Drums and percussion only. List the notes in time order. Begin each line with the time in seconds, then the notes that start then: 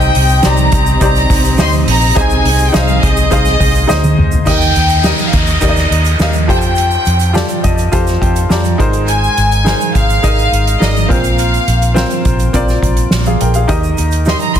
0.01 shaker
0.15 hi-hat pedal, open hi-hat
0.29 shaker
0.43 snare, hi-hat pedal, open hi-hat, shaker
0.57 shaker
0.72 kick, hi-hat pedal, open hi-hat, shaker
0.86 shaker
1.01 kick, hi-hat pedal, open hi-hat, shaker
1.16 snare, shaker
1.30 kick, hi-hat pedal, open hi-hat, shaker
1.45 shaker
1.58 snare, hi-hat pedal, open hi-hat, shaker
1.72 shaker
1.87 hi-hat pedal, open hi-hat
2.01 shaker
2.16 kick, hi-hat pedal, open hi-hat, shaker
2.30 shaker
2.45 hi-hat pedal, open hi-hat
2.59 shaker
2.74 snare, hi-hat pedal, open hi-hat, shaker
2.88 shaker
3.03 kick, hi-hat pedal, open hi-hat, shaker
3.17 shaker
3.31 kick, hi-hat pedal, open hi-hat, shaker
3.45 snare, shaker
3.60 kick, hi-hat pedal, open hi-hat, shaker
3.75 shaker
3.89 snare, shaker
4.04 high tom, shaker
4.19 mid tom
4.32 floor tom, shaker
4.46 kick, closed hi-hat, shaker
4.61 closed hi-hat, shaker
4.75 closed hi-hat, shaker
4.88 closed hi-hat, shaker
5.04 snare, shaker
5.18 closed hi-hat, shaker
5.33 kick, closed hi-hat, shaker
5.47 closed hi-hat, shaker
5.61 kick, closed hi-hat, shaker
5.76 snare, closed hi-hat, shaker
5.92 closed hi-hat
6.05 closed hi-hat, shaker
6.19 snare, shaker
6.33 closed hi-hat, shaker
6.49 kick, closed hi-hat
6.61 closed hi-hat, shaker
6.75 closed hi-hat, shaker
6.91 shaker
7.05 closed hi-hat, shaker
7.19 closed hi-hat, shaker
7.35 snare, shaker
7.49 closed hi-hat, shaker
7.64 kick, closed hi-hat, shaker
7.78 closed hi-hat, shaker
7.93 kick, closed hi-hat, shaker
8.07 snare, closed hi-hat, shaker
8.22 kick, closed hi-hat
8.36 closed hi-hat, shaker
8.50 snare, shaker
8.64 closed hi-hat, shaker
8.80 kick, closed hi-hat
8.93 closed hi-hat, shaker
9.08 closed hi-hat, shaker
9.24 shaker
9.37 closed hi-hat, shaker
9.52 closed hi-hat, shaker
9.66 snare, shaker
9.81 closed hi-hat, shaker
9.95 kick, closed hi-hat, shaker
10.10 closed hi-hat, shaker
10.24 kick, closed hi-hat, shaker
10.39 closed hi-hat, shaker
10.53 closed hi-hat
10.67 closed hi-hat, shaker
10.82 snare, shaker
10.96 closed hi-hat, shaker
11.10 kick, closed hi-hat
11.24 closed hi-hat, shaker
11.38 closed hi-hat, shaker
11.54 closed hi-hat, shaker
11.68 closed hi-hat, shaker
11.82 closed hi-hat, shaker
11.96 snare, shaker
12.10 closed hi-hat, shaker
12.25 kick, closed hi-hat, shaker
12.39 closed hi-hat, shaker
12.54 kick, closed hi-hat, shaker
12.68 snare, shaker
12.83 kick, closed hi-hat
12.97 closed hi-hat, shaker
13.11 snare, shaker
13.26 closed hi-hat, shaker
13.41 closed hi-hat
13.54 closed hi-hat, shaker
13.69 kick, closed hi-hat, shaker
13.83 shaker
13.97 closed hi-hat, shaker
14.11 closed hi-hat, shaker
14.25 snare, shaker
14.39 closed hi-hat, shaker
14.55 kick, closed hi-hat, shaker